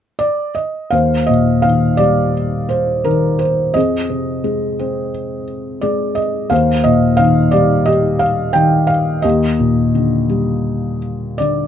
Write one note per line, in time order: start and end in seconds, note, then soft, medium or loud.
0.19 0.53 D5 medium
0.55 0.93 D#5 soft
0.90 3.70 D#2 soft
0.90 2.31 C5 soft
0.90 1.28 F5 medium
1.27 2.67 A#2 soft
1.27 1.64 D#5 medium
1.62 3.01 D#3 soft
1.62 1.99 F5 medium
1.97 3.36 G3 soft
1.97 2.66 D5 medium
2.69 3.06 C5 medium
3.04 3.73 D#3 soft
3.04 3.41 A#4 soft
3.39 3.72 C5 medium
3.74 6.46 F2 soft
3.74 5.10 G#4 soft
3.74 5.09 D#5 medium
4.10 5.44 C3 soft
4.44 5.78 G#3 soft
4.79 6.13 C4 soft
5.81 6.49 G#3 soft
5.81 6.17 D5 medium
6.15 6.51 D#5 medium
6.50 9.20 D#2 soft
6.50 7.83 C5 soft
6.50 6.82 F5 medium
6.84 8.17 A#2 soft
6.84 7.19 D#5 medium
7.17 8.51 D#3 soft
7.17 7.53 F5 medium
7.51 8.86 G3 soft
7.51 7.87 D5 medium
7.86 9.20 G4 soft
7.86 8.21 D#5 medium
8.19 8.52 F5 medium
8.53 9.22 D#3 soft
8.53 8.90 G5 medium
8.87 9.24 F5 medium
9.22 11.67 D#2 soft
9.22 11.36 G4 soft
9.22 11.35 D#5 medium
9.60 10.98 A#2 soft
9.95 11.36 D3 soft
10.30 11.67 G3 soft
11.38 11.67 D3 soft
11.38 11.67 D5 medium